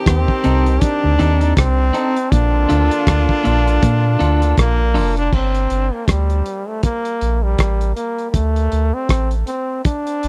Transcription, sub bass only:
0.07 0.27 D#2 loud
0.46 0.79 C2 loud
1.05 1.18 D2 loud
1.21 1.54 D#2 medium
1.58 1.91 C2 loud
2.33 2.66 A#1 medium
2.71 2.90 D2 medium
3.08 3.27 D2 loud
3.46 3.79 A#1 loud
3.84 4.17 A#2 loud
4.21 4.54 D2 medium
4.58 4.98 A#1 medium
4.96 5.30 F1 medium
5.34 5.67 G1 loud
5.71 5.91 G1 medium
6.09 6.42 D2 loud
7.22 7.56 A#1 medium
7.60 7.93 A1 medium
8.35 8.68 D2 medium
8.73 8.92 D2 medium
9.10 9.44 A1 medium
10.24 10.28 G1 medium

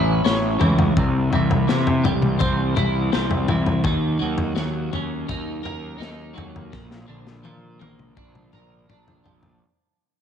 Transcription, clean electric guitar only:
0.00 0.58 E3 medium
0.00 0.98 A3 medium
0.00 0.23 C#4 medium
0.00 0.97 E4 medium
0.25 0.97 C#4 medium
0.59 0.96 E3 medium
0.97 2.77 C3 medium
1.33 1.67 E3 medium
1.68 3.47 E3 medium
2.04 3.85 G3 medium
2.39 3.11 C4 medium
2.76 3.85 E4 medium
3.12 3.85 C4 medium
3.48 3.84 E3 medium
3.84 5.65 D#3 medium
4.19 4.54 F#3 medium
4.56 6.33 F#3 medium
4.93 6.74 C#4 medium
5.29 5.97 D#4 medium
5.63 8.52 A#4 medium
5.98 6.72 D#4 medium
6.34 6.72 F#3 medium
6.72 8.53 A#2 medium
7.08 8.89 D3 medium
7.43 9.23 F3 medium
7.79 9.61 A#3 medium
8.17 8.88 D4 medium
8.53 9.62 A#4 medium
8.89 9.62 D4 medium
9.24 9.61 F3 medium

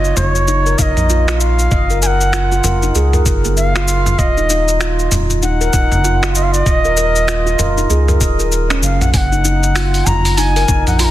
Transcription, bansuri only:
0.00 0.18 D#5 medium
0.16 0.80 C#5 medium
0.79 1.42 D#5 medium
0.79 0.83 F5 medium
1.40 2.01 F5 loud
2.02 2.08 G#5 medium
2.07 3.22 F#5 loud
3.57 4.20 F5 loud
4.19 5.11 D#5 loud
5.42 6.31 F#5 loud
6.35 6.45 D#5 medium
6.43 6.54 F5 medium
6.52 8.21 D#5 loud
8.83 9.03 F5 medium
9.01 9.13 F#5 medium
9.14 10.08 F#5 loud
9.14 9.18 G#5 medium
10.06 10.39 A#5 loud
10.38 10.87 G#5 loud
10.87 11.01 F#5 medium
10.99 11.05 C6 medium
11.04 11.11 A#5 loud

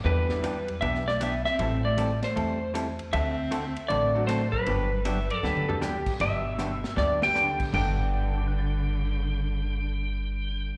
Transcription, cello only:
0.04 0.77 G3 medium
0.82 1.05 B3 medium
1.07 1.22 A3 medium
1.21 1.45 B3 medium
1.47 1.82 C4 medium
1.83 2.19 A3 medium
2.23 2.71 A3 medium
3.13 3.86 C4 medium
3.89 4.25 A3 medium
4.26 4.50 A3 medium
4.52 5.37 G3 medium
5.37 5.78 F3 medium
6.19 6.93 B2 medium
6.97 7.20 G2 medium
7.22 7.58 D3 medium
7.73 10.69 D3 medium

